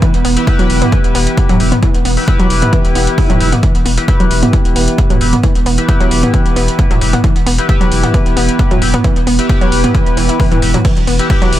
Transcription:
Already playing: E3 B3
0.02 E3, kick, closed hi-hat
0.14 E1, closed hi-hat
0.25 E1 B3, open hi-hat
0.37 E4 G4 B4, closed hi-hat
0.47 E4 G4 B4, kick, closed hi-hat
0.59 E1 F#3, closed hi-hat
0.70 E1, open hi-hat
0.82 B3, closed hi-hat, mid tom
0.92 E3, kick, closed hi-hat
1.04 E1, closed hi-hat
1.15 E1 B3, open hi-hat
1.27 closed hi-hat
1.37 kick, closed hi-hat
1.49 E1 F#3, closed hi-hat, mid tom
1.60 E1 E4 G4 B4, open hi-hat
1.72 B3, closed hi-hat, mid tom
1.83 E3, kick, closed hi-hat
1.94 E1, closed hi-hat
2.05 E1 B3, open hi-hat
2.17 E4 G4 B4, open hi-hat
2.28 E4 G4 B4, kick, closed hi-hat
2.40 E1 F#3, closed hi-hat
2.50 E1, open hi-hat
2.62 B3, closed hi-hat, mid tom
2.73 E3, kick, closed hi-hat, swell
2.85 E1, closed hi-hat
2.95 E1 B3, open hi-hat
3.07 closed hi-hat
3.18 kick, open hi-hat
3.30 E1 F#3, closed hi-hat, mid tom
3.40 E1 E4 G4 B4, open hi-hat
3.52 B3, closed hi-hat, mid tom
3.63 E3 B3, kick, closed hi-hat
3.75 E1, closed hi-hat
3.86 E1 B3, open hi-hat
3.98 E4 G4 B4, closed hi-hat
4.08 E4 G4 B4, kick, closed hi-hat
4.20 E1 F#3, closed hi-hat
4.31 E1, open hi-hat
4.43 B3, closed hi-hat, mid tom
4.53 E3, kick, closed hi-hat
4.65 E1, closed hi-hat
4.76 E1 B3, open hi-hat
4.88 closed hi-hat
4.98 kick, closed hi-hat
5.10 E1 F#3, closed hi-hat, mid tom
5.21 E1 E4 G4 B4, open hi-hat
5.33 B3, closed hi-hat, mid tom
5.43 E3, kick, closed hi-hat
5.55 E1, closed hi-hat
5.66 E1 B3, open hi-hat
5.78 E4 G4 B4, closed hi-hat
5.89 E4 G4 B4, kick, closed hi-hat
6.00 E1 F#3, closed hi-hat
6.11 E1, open hi-hat
6.23 B3, closed hi-hat, mid tom
6.34 E3, kick, closed hi-hat
6.46 E1, closed hi-hat
6.56 E1 B3, open hi-hat
6.68 closed hi-hat
6.79 kick, closed hi-hat
6.91 E1 F#3, closed hi-hat, mid tom
7.01 E1 E4 G4 B4, open hi-hat
7.13 B3, closed hi-hat, mid tom
7.24 E3, kick, closed hi-hat
7.36 E1, closed hi-hat
7.46 E1 B3, open hi-hat
7.58 E4 G4 B4, closed hi-hat
7.69 E4 G4 B4, kick, closed hi-hat
7.81 E1 F#3, closed hi-hat
7.92 E1, open hi-hat
8.03 B3, closed hi-hat, mid tom
8.14 E3, kick, closed hi-hat
8.26 E1, closed hi-hat
8.37 E1 B3, open hi-hat
8.49 closed hi-hat
8.59 kick, closed hi-hat
8.71 E1 F#3, closed hi-hat, mid tom
8.82 E1 E4 G4 B4, open hi-hat
8.94 B3, closed hi-hat, mid tom
9.04 E3, kick, closed hi-hat
9.16 E1, closed hi-hat
9.27 E1 B3, open hi-hat
9.39 E4 G4 B4, closed hi-hat
9.49 E4 G4 B4, kick, closed hi-hat
9.61 E1 F#3, closed hi-hat
9.72 E1, open hi-hat
9.84 B3, closed hi-hat, mid tom
9.95 E3, kick, closed hi-hat
10.06 E1, closed hi-hat
10.17 E1 E3, open hi-hat
10.29 E4, closed hi-hat
10.40 E3, kick, open hi-hat
10.52 E1 E3, closed hi-hat, mid tom
10.62 E1 E4 G4 B4, open hi-hat
10.74 F#3, closed hi-hat, mid tom
10.85 E3, kick, closed hi-hat, ride
10.97 E1, closed hi-hat
11.07 E1 B3, open hi-hat
11.19 E4 G4 B4, closed hi-hat
11.30 E4 G4 B4, kick, closed hi-hat, ride
11.42 E1 F#3, closed hi-hat
11.53 E1, open hi-hat

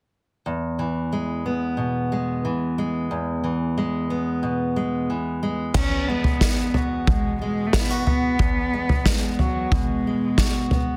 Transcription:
0.46 E2
0.79 E3
1.13 G#3
1.46 B3
1.77 B2
2.12 G#3
2.45 E3
2.78 G#3
3.11 E2
3.44 E3
3.78 G#3
4.10 B3
4.43 B2
4.76 G#3
5.10 E3
5.43 G#3
5.74 E2 C#4, kick, floor tom, crash
6.08 G#3 B3
6.24 floor tom
6.41 B3, kick, snare
6.74 F#4, floor tom
7.07 B2 G#3, kick, floor tom
7.42 G#3
7.67 A3
7.73 B3 E4, kick, snare
7.90 F#4
8.07 B3, floor tom
8.39 E2, kick, floor tom
8.73 G#3
8.89 floor tom
9.06 G#3 B3, kick, snare
9.32 G#3
9.39 F#3 F#4, floor tom
9.72 B2 G#3, kick, floor tom
10.07 G#3
10.38 F#4, kick, snare
10.71 B3, floor tom

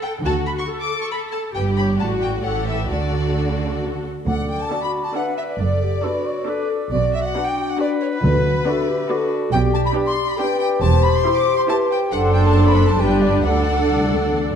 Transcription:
Already playing: A4
0.03 G5
0.23 D2 D3 F#4 A4 A5
0.47 B5
0.59 C#6
0.68 A4
0.80 D6
1.02 C#6
1.12 B5
1.32 A5
1.55 G1 G2 G4 B4 G5
1.77 C#5 B5
1.99 A1 A2 F#4 D5 A5
2.22 G5
2.43 A1 A2 G4 A4 C#5 F#5
2.66 B4 E5
2.89 D2 D3 F#4 A4 D5
4.27 D2 D3 A4 D5 F#5
4.49 G5
4.61 A5
4.71 D4 F#4 A4 D5
4.83 B5
5.04 A5
5.15 D4 A4 B4 D5 E5 F#5
5.37 E5
5.49 D5
5.60 F#1 F#2 A4 D5
5.83 G4
6.04 D4 F#4 A4 B4 D5
6.27 C#5
6.47 D4 A4 B4 D5
6.70 A4
6.91 B1 B2 F#4 D5
7.14 E5
7.25 F#5
7.36 D4 F#4 B4
7.48 G5
7.69 F#5
7.79 D4 F#4 B4 D5
8.01 C#5
8.13 B4
8.22 D2 D3 F#4
8.66 D4 F#4 A4 B4 E5
8.88 G4
9.10 D4 F#4 A4 B4 D5
9.52 B1 B2 G4 D5 G5
9.73 A5
9.85 B5
9.95 D4 G4 B4
10.07 C6
10.28 B5
10.38 D4 G4 B4 D5 G5
10.60 G5
10.81 E1 E2 G4 C5 A5
11.04 B5
11.15 C6
11.25 E4 G4 C5
11.36 D6
11.58 C6
11.68 E4 G4 B4 C5 A5
11.91 G5
12.12 F#1 F#2 D4 A4 C5 F#5
12.34 G5
12.46 A5
12.68 B5
12.89 A5
13.00 G1 G2 D4 G4 B4 G5
13.22 D5
13.44 D2 D4 A4 D5 F#5
13.92 C2
14.16 D2
14.28 E2
14.51 F#2

